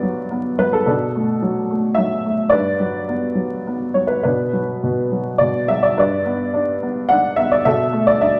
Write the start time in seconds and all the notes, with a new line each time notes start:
Already playing: G2 F#3 B3 B4 D5
0.03 F#3
0.31 B3
0.59 F#3 B4
0.73 A4
0.86 B2 D4 A4
1.15 A3
1.42 F#3
1.70 A3
1.95 F#3 E5
2.26 A3
2.49 G2 B4 D5
2.80 F#3
3.08 B3
3.35 F#3
3.67 B3
3.94 F#3 C#5
4.07 B4
4.23 B2 D4 B4
4.53 F#3
4.83 B2
5.12 F#3
5.38 B2 D5
5.68 F#3 E5
5.83 D5
5.97 G2 B4 D5
6.25 B3
6.54 D4
6.82 B3
7.09 D4 F#5
7.36 B3 E5
7.52 D5
7.65 B2 A4 E5
7.92 A3
8.07 D5
8.20 D4 E5